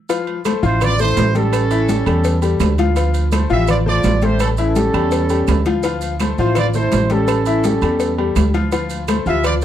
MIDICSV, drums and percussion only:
0, 0, Header, 1, 2, 480
1, 0, Start_track
1, 0, Tempo, 359497
1, 126, Time_signature, 4, 2, 24, 8
1, 12883, End_track
2, 0, Start_track
2, 0, Title_t, "Drums"
2, 124, Note_on_c, 9, 70, 78
2, 128, Note_on_c, 9, 68, 100
2, 132, Note_on_c, 9, 56, 117
2, 139, Note_on_c, 9, 63, 40
2, 257, Note_off_c, 9, 70, 0
2, 262, Note_off_c, 9, 68, 0
2, 266, Note_off_c, 9, 56, 0
2, 272, Note_off_c, 9, 63, 0
2, 364, Note_on_c, 9, 68, 75
2, 379, Note_on_c, 9, 63, 34
2, 498, Note_off_c, 9, 68, 0
2, 512, Note_off_c, 9, 63, 0
2, 599, Note_on_c, 9, 70, 76
2, 605, Note_on_c, 9, 66, 56
2, 605, Note_on_c, 9, 68, 114
2, 610, Note_on_c, 9, 63, 97
2, 612, Note_on_c, 9, 75, 72
2, 619, Note_on_c, 9, 56, 78
2, 732, Note_off_c, 9, 70, 0
2, 738, Note_off_c, 9, 66, 0
2, 738, Note_off_c, 9, 68, 0
2, 744, Note_off_c, 9, 63, 0
2, 746, Note_off_c, 9, 75, 0
2, 753, Note_off_c, 9, 56, 0
2, 843, Note_on_c, 9, 70, 31
2, 849, Note_on_c, 9, 63, 37
2, 976, Note_off_c, 9, 70, 0
2, 983, Note_off_c, 9, 63, 0
2, 1081, Note_on_c, 9, 70, 68
2, 1085, Note_on_c, 9, 68, 109
2, 1093, Note_on_c, 9, 56, 115
2, 1093, Note_on_c, 9, 63, 39
2, 1093, Note_on_c, 9, 64, 96
2, 1093, Note_on_c, 9, 75, 74
2, 1215, Note_off_c, 9, 70, 0
2, 1218, Note_off_c, 9, 68, 0
2, 1227, Note_off_c, 9, 56, 0
2, 1227, Note_off_c, 9, 63, 0
2, 1227, Note_off_c, 9, 64, 0
2, 1227, Note_off_c, 9, 75, 0
2, 1319, Note_on_c, 9, 70, 63
2, 1327, Note_on_c, 9, 63, 34
2, 1327, Note_on_c, 9, 64, 75
2, 1452, Note_off_c, 9, 70, 0
2, 1460, Note_off_c, 9, 63, 0
2, 1460, Note_off_c, 9, 64, 0
2, 1561, Note_on_c, 9, 70, 86
2, 1562, Note_on_c, 9, 66, 92
2, 1562, Note_on_c, 9, 68, 91
2, 1569, Note_on_c, 9, 63, 94
2, 1575, Note_on_c, 9, 56, 76
2, 1694, Note_off_c, 9, 70, 0
2, 1695, Note_off_c, 9, 66, 0
2, 1695, Note_off_c, 9, 68, 0
2, 1702, Note_off_c, 9, 63, 0
2, 1708, Note_off_c, 9, 56, 0
2, 1803, Note_on_c, 9, 63, 84
2, 1805, Note_on_c, 9, 70, 31
2, 1811, Note_on_c, 9, 56, 79
2, 1937, Note_off_c, 9, 63, 0
2, 1939, Note_off_c, 9, 70, 0
2, 1944, Note_off_c, 9, 56, 0
2, 2039, Note_on_c, 9, 68, 116
2, 2043, Note_on_c, 9, 70, 83
2, 2044, Note_on_c, 9, 56, 122
2, 2050, Note_on_c, 9, 75, 68
2, 2173, Note_off_c, 9, 68, 0
2, 2177, Note_off_c, 9, 70, 0
2, 2178, Note_off_c, 9, 56, 0
2, 2183, Note_off_c, 9, 75, 0
2, 2280, Note_on_c, 9, 70, 66
2, 2281, Note_on_c, 9, 68, 91
2, 2291, Note_on_c, 9, 63, 36
2, 2413, Note_off_c, 9, 70, 0
2, 2414, Note_off_c, 9, 68, 0
2, 2424, Note_off_c, 9, 63, 0
2, 2518, Note_on_c, 9, 70, 72
2, 2519, Note_on_c, 9, 66, 64
2, 2525, Note_on_c, 9, 63, 106
2, 2526, Note_on_c, 9, 56, 73
2, 2652, Note_off_c, 9, 70, 0
2, 2653, Note_off_c, 9, 66, 0
2, 2658, Note_off_c, 9, 63, 0
2, 2660, Note_off_c, 9, 56, 0
2, 2755, Note_on_c, 9, 68, 103
2, 2756, Note_on_c, 9, 70, 31
2, 2769, Note_on_c, 9, 75, 73
2, 2889, Note_off_c, 9, 68, 0
2, 2889, Note_off_c, 9, 70, 0
2, 2903, Note_off_c, 9, 75, 0
2, 2991, Note_on_c, 9, 70, 77
2, 3000, Note_on_c, 9, 63, 37
2, 3000, Note_on_c, 9, 68, 76
2, 3002, Note_on_c, 9, 56, 114
2, 3124, Note_off_c, 9, 70, 0
2, 3133, Note_off_c, 9, 63, 0
2, 3133, Note_off_c, 9, 68, 0
2, 3135, Note_off_c, 9, 56, 0
2, 3232, Note_on_c, 9, 70, 60
2, 3234, Note_on_c, 9, 68, 89
2, 3245, Note_on_c, 9, 63, 37
2, 3365, Note_off_c, 9, 70, 0
2, 3367, Note_off_c, 9, 68, 0
2, 3379, Note_off_c, 9, 63, 0
2, 3470, Note_on_c, 9, 70, 81
2, 3474, Note_on_c, 9, 66, 94
2, 3474, Note_on_c, 9, 68, 112
2, 3479, Note_on_c, 9, 63, 88
2, 3488, Note_on_c, 9, 75, 75
2, 3490, Note_on_c, 9, 56, 73
2, 3603, Note_off_c, 9, 70, 0
2, 3607, Note_off_c, 9, 66, 0
2, 3607, Note_off_c, 9, 68, 0
2, 3613, Note_off_c, 9, 63, 0
2, 3621, Note_off_c, 9, 75, 0
2, 3623, Note_off_c, 9, 56, 0
2, 3712, Note_on_c, 9, 70, 33
2, 3716, Note_on_c, 9, 68, 73
2, 3721, Note_on_c, 9, 63, 83
2, 3724, Note_on_c, 9, 56, 74
2, 3846, Note_off_c, 9, 70, 0
2, 3850, Note_off_c, 9, 68, 0
2, 3854, Note_off_c, 9, 63, 0
2, 3858, Note_off_c, 9, 56, 0
2, 3952, Note_on_c, 9, 70, 77
2, 3954, Note_on_c, 9, 68, 100
2, 3960, Note_on_c, 9, 63, 38
2, 3963, Note_on_c, 9, 56, 110
2, 4086, Note_off_c, 9, 70, 0
2, 4088, Note_off_c, 9, 68, 0
2, 4093, Note_off_c, 9, 63, 0
2, 4097, Note_off_c, 9, 56, 0
2, 4192, Note_on_c, 9, 70, 67
2, 4197, Note_on_c, 9, 68, 72
2, 4201, Note_on_c, 9, 63, 36
2, 4326, Note_off_c, 9, 70, 0
2, 4330, Note_off_c, 9, 68, 0
2, 4334, Note_off_c, 9, 63, 0
2, 4429, Note_on_c, 9, 70, 78
2, 4438, Note_on_c, 9, 63, 106
2, 4440, Note_on_c, 9, 66, 67
2, 4440, Note_on_c, 9, 68, 106
2, 4445, Note_on_c, 9, 56, 81
2, 4445, Note_on_c, 9, 75, 69
2, 4562, Note_off_c, 9, 70, 0
2, 4571, Note_off_c, 9, 63, 0
2, 4574, Note_off_c, 9, 66, 0
2, 4574, Note_off_c, 9, 68, 0
2, 4578, Note_off_c, 9, 56, 0
2, 4578, Note_off_c, 9, 75, 0
2, 4667, Note_on_c, 9, 70, 29
2, 4677, Note_on_c, 9, 63, 39
2, 4800, Note_off_c, 9, 70, 0
2, 4810, Note_off_c, 9, 63, 0
2, 4905, Note_on_c, 9, 70, 70
2, 4914, Note_on_c, 9, 63, 39
2, 4914, Note_on_c, 9, 64, 97
2, 4919, Note_on_c, 9, 68, 115
2, 4920, Note_on_c, 9, 56, 111
2, 4924, Note_on_c, 9, 75, 77
2, 5039, Note_off_c, 9, 70, 0
2, 5047, Note_off_c, 9, 63, 0
2, 5047, Note_off_c, 9, 64, 0
2, 5053, Note_off_c, 9, 68, 0
2, 5054, Note_off_c, 9, 56, 0
2, 5057, Note_off_c, 9, 75, 0
2, 5159, Note_on_c, 9, 63, 32
2, 5159, Note_on_c, 9, 64, 70
2, 5293, Note_off_c, 9, 63, 0
2, 5293, Note_off_c, 9, 64, 0
2, 5386, Note_on_c, 9, 70, 80
2, 5396, Note_on_c, 9, 63, 93
2, 5398, Note_on_c, 9, 66, 88
2, 5398, Note_on_c, 9, 68, 90
2, 5402, Note_on_c, 9, 56, 74
2, 5519, Note_off_c, 9, 70, 0
2, 5529, Note_off_c, 9, 63, 0
2, 5532, Note_off_c, 9, 66, 0
2, 5532, Note_off_c, 9, 68, 0
2, 5535, Note_off_c, 9, 56, 0
2, 5626, Note_on_c, 9, 70, 32
2, 5634, Note_on_c, 9, 63, 85
2, 5641, Note_on_c, 9, 56, 73
2, 5760, Note_off_c, 9, 70, 0
2, 5767, Note_off_c, 9, 63, 0
2, 5774, Note_off_c, 9, 56, 0
2, 5866, Note_on_c, 9, 70, 80
2, 5878, Note_on_c, 9, 75, 67
2, 5880, Note_on_c, 9, 68, 115
2, 5881, Note_on_c, 9, 56, 112
2, 5883, Note_on_c, 9, 63, 36
2, 5999, Note_off_c, 9, 70, 0
2, 6012, Note_off_c, 9, 75, 0
2, 6013, Note_off_c, 9, 68, 0
2, 6015, Note_off_c, 9, 56, 0
2, 6016, Note_off_c, 9, 63, 0
2, 6105, Note_on_c, 9, 70, 68
2, 6119, Note_on_c, 9, 68, 83
2, 6122, Note_on_c, 9, 63, 36
2, 6238, Note_off_c, 9, 70, 0
2, 6253, Note_off_c, 9, 68, 0
2, 6256, Note_off_c, 9, 63, 0
2, 6349, Note_on_c, 9, 70, 76
2, 6357, Note_on_c, 9, 63, 111
2, 6359, Note_on_c, 9, 56, 70
2, 6361, Note_on_c, 9, 66, 62
2, 6483, Note_off_c, 9, 70, 0
2, 6491, Note_off_c, 9, 63, 0
2, 6492, Note_off_c, 9, 56, 0
2, 6494, Note_off_c, 9, 66, 0
2, 6591, Note_on_c, 9, 70, 31
2, 6599, Note_on_c, 9, 75, 73
2, 6600, Note_on_c, 9, 68, 104
2, 6724, Note_off_c, 9, 70, 0
2, 6733, Note_off_c, 9, 68, 0
2, 6733, Note_off_c, 9, 75, 0
2, 6825, Note_on_c, 9, 70, 73
2, 6836, Note_on_c, 9, 56, 111
2, 6842, Note_on_c, 9, 63, 36
2, 6844, Note_on_c, 9, 68, 74
2, 6959, Note_off_c, 9, 70, 0
2, 6970, Note_off_c, 9, 56, 0
2, 6975, Note_off_c, 9, 63, 0
2, 6977, Note_off_c, 9, 68, 0
2, 7067, Note_on_c, 9, 70, 64
2, 7078, Note_on_c, 9, 68, 88
2, 7082, Note_on_c, 9, 63, 32
2, 7201, Note_off_c, 9, 70, 0
2, 7211, Note_off_c, 9, 68, 0
2, 7215, Note_off_c, 9, 63, 0
2, 7308, Note_on_c, 9, 70, 82
2, 7314, Note_on_c, 9, 63, 89
2, 7315, Note_on_c, 9, 75, 70
2, 7320, Note_on_c, 9, 56, 69
2, 7323, Note_on_c, 9, 66, 92
2, 7323, Note_on_c, 9, 68, 112
2, 7442, Note_off_c, 9, 70, 0
2, 7448, Note_off_c, 9, 63, 0
2, 7448, Note_off_c, 9, 75, 0
2, 7454, Note_off_c, 9, 56, 0
2, 7457, Note_off_c, 9, 66, 0
2, 7457, Note_off_c, 9, 68, 0
2, 7547, Note_on_c, 9, 70, 35
2, 7554, Note_on_c, 9, 56, 80
2, 7557, Note_on_c, 9, 63, 83
2, 7565, Note_on_c, 9, 68, 77
2, 7680, Note_off_c, 9, 70, 0
2, 7688, Note_off_c, 9, 56, 0
2, 7690, Note_off_c, 9, 63, 0
2, 7698, Note_off_c, 9, 68, 0
2, 7784, Note_on_c, 9, 70, 73
2, 7792, Note_on_c, 9, 56, 114
2, 7796, Note_on_c, 9, 63, 37
2, 7804, Note_on_c, 9, 68, 91
2, 7917, Note_off_c, 9, 70, 0
2, 7926, Note_off_c, 9, 56, 0
2, 7930, Note_off_c, 9, 63, 0
2, 7938, Note_off_c, 9, 68, 0
2, 8027, Note_on_c, 9, 70, 68
2, 8038, Note_on_c, 9, 63, 34
2, 8045, Note_on_c, 9, 68, 73
2, 8160, Note_off_c, 9, 70, 0
2, 8172, Note_off_c, 9, 63, 0
2, 8178, Note_off_c, 9, 68, 0
2, 8273, Note_on_c, 9, 56, 71
2, 8274, Note_on_c, 9, 70, 71
2, 8281, Note_on_c, 9, 75, 68
2, 8284, Note_on_c, 9, 63, 107
2, 8287, Note_on_c, 9, 66, 65
2, 8287, Note_on_c, 9, 68, 104
2, 8406, Note_off_c, 9, 56, 0
2, 8407, Note_off_c, 9, 70, 0
2, 8415, Note_off_c, 9, 75, 0
2, 8417, Note_off_c, 9, 63, 0
2, 8421, Note_off_c, 9, 66, 0
2, 8421, Note_off_c, 9, 68, 0
2, 8517, Note_on_c, 9, 70, 30
2, 8521, Note_on_c, 9, 63, 36
2, 8651, Note_off_c, 9, 70, 0
2, 8654, Note_off_c, 9, 63, 0
2, 8749, Note_on_c, 9, 56, 115
2, 8756, Note_on_c, 9, 70, 68
2, 8762, Note_on_c, 9, 68, 102
2, 8768, Note_on_c, 9, 75, 71
2, 8769, Note_on_c, 9, 63, 38
2, 8769, Note_on_c, 9, 64, 90
2, 8882, Note_off_c, 9, 56, 0
2, 8889, Note_off_c, 9, 70, 0
2, 8896, Note_off_c, 9, 68, 0
2, 8902, Note_off_c, 9, 63, 0
2, 8902, Note_off_c, 9, 64, 0
2, 8902, Note_off_c, 9, 75, 0
2, 8994, Note_on_c, 9, 70, 62
2, 9007, Note_on_c, 9, 63, 34
2, 9007, Note_on_c, 9, 64, 73
2, 9128, Note_off_c, 9, 70, 0
2, 9141, Note_off_c, 9, 63, 0
2, 9141, Note_off_c, 9, 64, 0
2, 9236, Note_on_c, 9, 56, 78
2, 9237, Note_on_c, 9, 70, 83
2, 9241, Note_on_c, 9, 63, 97
2, 9246, Note_on_c, 9, 66, 92
2, 9246, Note_on_c, 9, 68, 88
2, 9369, Note_off_c, 9, 56, 0
2, 9370, Note_off_c, 9, 70, 0
2, 9374, Note_off_c, 9, 63, 0
2, 9380, Note_off_c, 9, 66, 0
2, 9380, Note_off_c, 9, 68, 0
2, 9477, Note_on_c, 9, 56, 74
2, 9479, Note_on_c, 9, 70, 33
2, 9486, Note_on_c, 9, 63, 82
2, 9611, Note_off_c, 9, 56, 0
2, 9612, Note_off_c, 9, 70, 0
2, 9620, Note_off_c, 9, 63, 0
2, 9715, Note_on_c, 9, 70, 73
2, 9719, Note_on_c, 9, 56, 120
2, 9723, Note_on_c, 9, 68, 121
2, 9731, Note_on_c, 9, 75, 70
2, 9848, Note_off_c, 9, 70, 0
2, 9852, Note_off_c, 9, 56, 0
2, 9857, Note_off_c, 9, 68, 0
2, 9865, Note_off_c, 9, 75, 0
2, 9956, Note_on_c, 9, 70, 71
2, 9964, Note_on_c, 9, 68, 86
2, 9976, Note_on_c, 9, 63, 35
2, 10090, Note_off_c, 9, 70, 0
2, 10098, Note_off_c, 9, 68, 0
2, 10110, Note_off_c, 9, 63, 0
2, 10197, Note_on_c, 9, 70, 78
2, 10200, Note_on_c, 9, 56, 77
2, 10205, Note_on_c, 9, 66, 65
2, 10216, Note_on_c, 9, 63, 104
2, 10330, Note_off_c, 9, 70, 0
2, 10334, Note_off_c, 9, 56, 0
2, 10338, Note_off_c, 9, 66, 0
2, 10349, Note_off_c, 9, 63, 0
2, 10437, Note_on_c, 9, 70, 33
2, 10443, Note_on_c, 9, 68, 95
2, 10452, Note_on_c, 9, 75, 70
2, 10571, Note_off_c, 9, 70, 0
2, 10576, Note_off_c, 9, 68, 0
2, 10586, Note_off_c, 9, 75, 0
2, 10677, Note_on_c, 9, 70, 71
2, 10679, Note_on_c, 9, 56, 112
2, 10685, Note_on_c, 9, 68, 68
2, 10690, Note_on_c, 9, 63, 37
2, 10811, Note_off_c, 9, 70, 0
2, 10812, Note_off_c, 9, 56, 0
2, 10819, Note_off_c, 9, 68, 0
2, 10823, Note_off_c, 9, 63, 0
2, 10926, Note_on_c, 9, 63, 34
2, 10929, Note_on_c, 9, 68, 93
2, 11059, Note_off_c, 9, 63, 0
2, 11063, Note_off_c, 9, 68, 0
2, 11158, Note_on_c, 9, 70, 77
2, 11163, Note_on_c, 9, 66, 90
2, 11163, Note_on_c, 9, 68, 111
2, 11167, Note_on_c, 9, 56, 74
2, 11169, Note_on_c, 9, 63, 95
2, 11173, Note_on_c, 9, 75, 69
2, 11292, Note_off_c, 9, 70, 0
2, 11296, Note_off_c, 9, 66, 0
2, 11296, Note_off_c, 9, 68, 0
2, 11300, Note_off_c, 9, 56, 0
2, 11302, Note_off_c, 9, 63, 0
2, 11306, Note_off_c, 9, 75, 0
2, 11403, Note_on_c, 9, 68, 72
2, 11403, Note_on_c, 9, 70, 32
2, 11410, Note_on_c, 9, 56, 75
2, 11412, Note_on_c, 9, 63, 83
2, 11536, Note_off_c, 9, 70, 0
2, 11537, Note_off_c, 9, 68, 0
2, 11543, Note_off_c, 9, 56, 0
2, 11545, Note_off_c, 9, 63, 0
2, 11638, Note_on_c, 9, 70, 72
2, 11649, Note_on_c, 9, 56, 119
2, 11649, Note_on_c, 9, 63, 38
2, 11649, Note_on_c, 9, 68, 98
2, 11772, Note_off_c, 9, 70, 0
2, 11782, Note_off_c, 9, 63, 0
2, 11782, Note_off_c, 9, 68, 0
2, 11783, Note_off_c, 9, 56, 0
2, 11879, Note_on_c, 9, 70, 71
2, 11894, Note_on_c, 9, 63, 38
2, 11895, Note_on_c, 9, 68, 77
2, 12012, Note_off_c, 9, 70, 0
2, 12027, Note_off_c, 9, 63, 0
2, 12029, Note_off_c, 9, 68, 0
2, 12120, Note_on_c, 9, 70, 77
2, 12126, Note_on_c, 9, 75, 72
2, 12130, Note_on_c, 9, 56, 79
2, 12130, Note_on_c, 9, 66, 63
2, 12130, Note_on_c, 9, 68, 113
2, 12133, Note_on_c, 9, 63, 106
2, 12253, Note_off_c, 9, 70, 0
2, 12260, Note_off_c, 9, 75, 0
2, 12263, Note_off_c, 9, 66, 0
2, 12263, Note_off_c, 9, 68, 0
2, 12264, Note_off_c, 9, 56, 0
2, 12266, Note_off_c, 9, 63, 0
2, 12362, Note_on_c, 9, 70, 32
2, 12367, Note_on_c, 9, 63, 39
2, 12496, Note_off_c, 9, 70, 0
2, 12501, Note_off_c, 9, 63, 0
2, 12603, Note_on_c, 9, 70, 70
2, 12608, Note_on_c, 9, 56, 117
2, 12611, Note_on_c, 9, 68, 110
2, 12612, Note_on_c, 9, 75, 70
2, 12616, Note_on_c, 9, 63, 38
2, 12616, Note_on_c, 9, 64, 88
2, 12737, Note_off_c, 9, 70, 0
2, 12741, Note_off_c, 9, 56, 0
2, 12745, Note_off_c, 9, 68, 0
2, 12745, Note_off_c, 9, 75, 0
2, 12750, Note_off_c, 9, 63, 0
2, 12750, Note_off_c, 9, 64, 0
2, 12839, Note_on_c, 9, 70, 62
2, 12883, Note_off_c, 9, 70, 0
2, 12883, End_track
0, 0, End_of_file